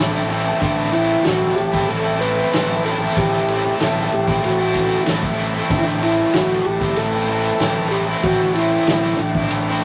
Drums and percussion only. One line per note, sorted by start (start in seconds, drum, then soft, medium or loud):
0.30 ride medium
0.61 kick medium
0.61 ride medium
0.93 ride medium
1.25 snare medium
1.25 ride medium
1.58 ride soft
1.74 kick medium
1.90 ride medium
2.22 ride medium
2.53 snare medium
2.53 ride medium
2.86 snare soft
2.86 ride soft
3.17 kick medium
3.17 ride medium
3.48 ride medium
3.80 snare medium
3.80 ride medium
4.12 ride medium
4.28 kick medium
4.44 ride medium
4.75 kick medium
4.75 ride medium
5.06 snare medium
5.06 ride medium
5.23 kick medium
5.39 ride medium
5.70 kick loud
5.70 ride medium
6.03 ride medium
6.33 snare loud
6.33 ride medium
6.65 ride medium
6.81 kick medium
6.96 ride medium
7.28 ride medium
7.60 snare medium
7.60 ride medium
7.92 ride soft
8.23 kick medium
8.23 ride medium
8.55 ride soft
8.87 snare loud
8.87 ride medium
9.18 ride medium
9.35 kick medium
9.51 ride medium